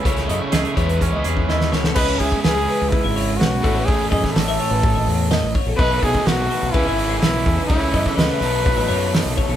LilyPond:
<<
  \new Staff \with { instrumentName = "Clean electric guitar" } { \time 4/4 \key cis \minor \tempo 4 = 125 cis''8 dis''16 cis''16 dis''16 e''16 cis''16 b'16 cis''16 dis''16 cis''8 dis''8 cis''16 a'16 | dis''16 cis''16 e''8 b'16 gis'16 b'8 b'16 e''16 cis''16 gis'16 b'8 a'16 b'16 | cis''8 dis''16 cis''16 dis''16 e''16 cis''16 b'16 cis''16 dis''16 cis''8 dis''8 cis''16 a'16 | dis''16 b'16 dis''8 b'16 gis'16 b'8 b'16 e''16 cis''16 gis'16 b'8 a'16 b'16 |
cis''8 dis''16 cis''16 dis''16 e''16 cis''16 b'16 cis''16 dis''16 cis''8 dis''8 cis''16 a'16 | }
  \new Staff \with { instrumentName = "Trumpet" } { \time 4/4 \key cis \minor r1 | b'8 gis'8 gis'4 e'4 fis'4 | gis'8 gis'8 a'2~ a'8 r8 | b'8 gis'8 fis'4 e'4 e'4 |
e'4 b'2~ b'8 r8 | }
  \new Staff \with { instrumentName = "Clean electric guitar" } { \time 4/4 \key cis \minor << { r8 a8 gis'8 r8 cis'8 gis'8 e'4 | r1 | r1 | r1 |
r1 | } \\ { cis4. e,2 b,8 | r1 | r1 | r1 |
r1 | } >> }
  \new Staff \with { instrumentName = "Overdriven electric guitar" } { \time 4/4 \key cis \minor <cis a cis' e'>4. <e gis b e'>2~ <e gis b e'>8 | <cis gis cis' e'>2.~ <cis gis cis' e'>8 <a, e a cis' e'>8~ | <a, e a cis' e'>2.~ <a, e a cis' e'>8 r8 | <b, fis a dis'>2 <cis e gis cis'>2 |
<cis e a cis'>4. <b, fis a dis'>2~ <b, fis a dis'>8 | }
  \new Staff \with { instrumentName = "Fingered electric bass" } { \clef bass \time 4/4 \key cis \minor cis,8 fis,16 r16 cis,16 r16 e,8. cis,16 e,8 dis,8 cis,8 | cis,8 cis,16 r16 cis,8 r16 cis,16 r16 gis,,8. b,,8 a,,8 | r8 fis,16 r16 a,,8 r16 a,,8 gis,,16 e,8. a,,16 r16 ais,,16 | b,,8 b,,16 r16 b,,8 r16 b,,16 cis,16 gis,,8. b,,8 e,16 r16 |
cis,8 fis,16 r16 cis,16 r16 b,,8. a,,16 fis,8. b,,16 r16 b,,16 | }
  \new DrumStaff \with { instrumentName = "Drums" } \drummode { \time 4/4 <hh bd>16 <hh sn>16 hh8 <hh sn>16 hh16 <hh bd>16 hh16 <hh bd>8 hh16 bd16 sn16 sn16 sn16 sn16 | <cymc bd>8 <hho bd>16 bd16 <hho sn>8 hho8 <hho bd>8 hho8 <hho sn>8 <hho bd>8 | <hho bd>8 <hho bd>16 <bd sn>16 <hho sn>8 hho8 <hho bd>8 hho8 <hho sn>8 <hho bd>8 | <hho bd>8 <hho bd>16 <bd sn>16 <hho sn>8 hho8 <hho bd>8 hho8 <hho sn>8 <hho bd>8 |
<hho bd>8 <hho bd>16 <bd sn>16 <hho sn>8 hho8 <hho bd>8 hho8 <hho sn>8 <hho bd>8 | }
>>